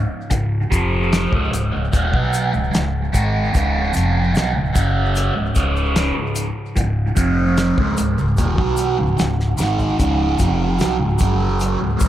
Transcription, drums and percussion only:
0.31 kick, closed hi-hat, shaker
0.72 kick, closed hi-hat, shaker
1.13 snare, closed hi-hat, shaker
1.33 kick
1.53 closed hi-hat, shaker
1.93 kick, closed hi-hat, shaker
2.14 kick
2.33 closed hi-hat, shaker
2.54 shaker
2.74 snare, closed hi-hat, shaker
3.14 kick, closed hi-hat, shaker
3.54 kick, closed hi-hat, shaker
3.94 closed hi-hat, shaker
4.35 snare, closed hi-hat, shaker
4.76 kick, closed hi-hat, shaker
5.15 closed hi-hat, shaker
5.55 kick, closed hi-hat, shaker
5.77 shaker
5.96 snare, closed hi-hat, shaker
6.36 closed hi-hat, shaker
6.77 kick, closed hi-hat, shaker
7.17 kick, closed hi-hat, shaker
7.57 snare, closed hi-hat, shaker
7.78 kick
7.97 closed hi-hat, shaker
8.18 shaker
8.37 kick, closed hi-hat, shaker
8.58 kick
8.77 closed hi-hat, shaker
9.18 snare, closed hi-hat, shaker
9.40 snare
9.58 snare, shaker
9.79 floor tom, shaker
9.99 kick, closed hi-hat, shaker
10.39 kick, closed hi-hat, shaker
10.79 snare, closed hi-hat, shaker
11.19 kick, closed hi-hat, shaker
11.60 closed hi-hat, shaker
12.00 kick, closed hi-hat, shaker

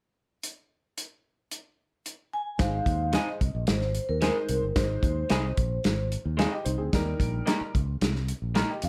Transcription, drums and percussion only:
0.43 closed hi-hat
0.98 closed hi-hat
1.51 closed hi-hat
2.06 closed hi-hat
2.59 kick, snare, closed hi-hat
2.86 kick, closed hi-hat
3.13 snare, closed hi-hat
3.41 kick, closed hi-hat
3.67 snare, closed hi-hat
3.81 snare
3.95 closed hi-hat
4.22 snare, closed hi-hat
4.49 closed hi-hat
4.76 kick, snare, closed hi-hat
5.03 kick, closed hi-hat
5.30 snare, closed hi-hat
5.57 kick, closed hi-hat
5.84 snare, closed hi-hat
6.12 closed hi-hat
6.39 snare, closed hi-hat
6.66 closed hi-hat
6.93 kick, snare, closed hi-hat
7.20 kick, closed hi-hat
7.47 snare, closed hi-hat
7.75 kick, closed hi-hat
8.01 snare, closed hi-hat
8.16 snare
8.28 closed hi-hat
8.55 snare, closed hi-hat
8.82 closed hi-hat

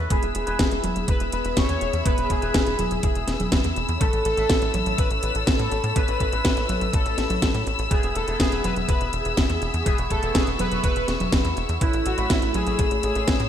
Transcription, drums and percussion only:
0.10 kick, closed hi-hat
0.23 closed hi-hat
0.35 closed hi-hat
0.47 closed hi-hat
0.59 kick, snare, closed hi-hat
0.71 closed hi-hat
0.84 closed hi-hat, high conga
0.96 closed hi-hat
1.08 kick, closed hi-hat
1.20 closed hi-hat
1.32 closed hi-hat
1.45 closed hi-hat
1.57 kick, snare, closed hi-hat
1.69 closed hi-hat
1.81 closed hi-hat
1.93 closed hi-hat
2.06 kick, closed hi-hat
2.18 closed hi-hat
2.30 kick, closed hi-hat
2.42 closed hi-hat
2.54 kick, snare, closed hi-hat
2.67 closed hi-hat
2.79 closed hi-hat, high conga
2.91 closed hi-hat
3.03 kick, closed hi-hat
3.15 closed hi-hat
3.28 snare, closed hi-hat
3.40 closed hi-hat, high conga
3.52 kick, snare, closed hi-hat
3.64 closed hi-hat
3.76 closed hi-hat
3.89 closed hi-hat
4.01 kick, closed hi-hat
4.13 closed hi-hat
4.25 closed hi-hat
4.37 closed hi-hat
4.50 kick, snare, closed hi-hat
4.62 closed hi-hat
4.74 closed hi-hat, high conga
4.86 closed hi-hat
4.98 kick, closed hi-hat
5.11 closed hi-hat
5.23 closed hi-hat
5.35 closed hi-hat
5.47 kick, snare, closed hi-hat
5.59 closed hi-hat
5.72 closed hi-hat
5.84 closed hi-hat
5.96 kick, closed hi-hat
6.08 closed hi-hat
6.20 kick, closed hi-hat
6.33 closed hi-hat
6.45 kick, snare, closed hi-hat
6.57 closed hi-hat
6.69 closed hi-hat, high conga
6.81 closed hi-hat
6.93 kick, closed hi-hat
7.06 closed hi-hat
7.18 snare, closed hi-hat
7.30 closed hi-hat, high conga
7.42 kick, snare, closed hi-hat
7.55 closed hi-hat
7.67 closed hi-hat
7.79 closed hi-hat
7.91 kick, closed hi-hat
8.03 closed hi-hat
8.15 closed hi-hat
8.28 closed hi-hat
8.40 kick, snare, closed hi-hat
8.52 closed hi-hat
8.64 closed hi-hat, high conga
8.76 closed hi-hat
8.89 kick, closed hi-hat
9.01 closed hi-hat
9.13 closed hi-hat
9.25 closed hi-hat
9.37 kick, snare, closed hi-hat
9.50 closed hi-hat
9.62 closed hi-hat
9.74 closed hi-hat
9.86 kick, closed hi-hat
9.98 closed hi-hat
10.10 kick, closed hi-hat
10.23 closed hi-hat
10.35 kick, snare, closed hi-hat
10.47 closed hi-hat
10.59 closed hi-hat, high conga
10.71 closed hi-hat
10.84 kick, closed hi-hat
10.96 closed hi-hat
11.08 snare, closed hi-hat
11.20 closed hi-hat, high conga
11.32 kick, snare, closed hi-hat
11.45 closed hi-hat
11.57 closed hi-hat
11.69 closed hi-hat
11.81 kick, closed hi-hat
11.93 closed hi-hat
12.06 closed hi-hat
12.18 closed hi-hat
12.30 kick, snare, closed hi-hat
12.42 closed hi-hat
12.54 closed hi-hat, high conga
12.67 closed hi-hat
12.79 kick, closed hi-hat
12.91 closed hi-hat
13.03 closed hi-hat
13.15 closed hi-hat
13.28 kick, snare, closed hi-hat
13.40 closed hi-hat

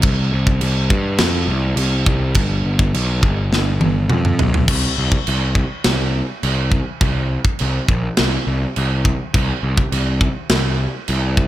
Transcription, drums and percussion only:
0.02 kick, crash
0.47 kick
0.61 crash
0.90 kick
1.18 snare, crash
1.77 crash
2.06 kick
2.34 kick, crash
2.79 kick
2.94 crash
3.23 kick
3.53 snare
3.81 high tom
4.10 mid tom
4.25 mid tom
4.39 floor tom
4.54 floor tom
4.68 kick, crash, china
5.12 kick
5.27 china
5.55 kick
5.84 snare, china
6.43 china
6.72 kick
7.01 kick, china
7.45 kick
7.59 china
7.88 kick
8.17 snare, china
8.76 china
9.05 kick
9.34 kick, china
9.78 kick
9.92 china
10.21 kick
10.49 snare, china
11.08 china
11.37 kick

